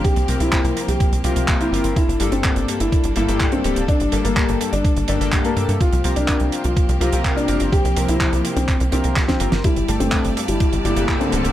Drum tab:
HH |xxxxxxxxxxxxxxxx|xxxxxxxxxxxxxxxx|xxxxxxxxxxxxxxxx|xxxxxxxxxxxxxxxx|
CP |----x-------x---|----x-------x---|----x-------x---|----x-------x---|
SD |----------------|----------------|----------------|----------------|
BD |o---o---o---o---|o---o---o---o---|o---o---o---o---|o---o---o---o---|

HH |xxxxxxxxxxxxxxxx|xxxxxxxxxxxxxxxx|
CP |----x---x---x---|----x-------x---|
SD |------------oo-o|----------------|
BD |o---o---o---oo--|o---o---o---o---|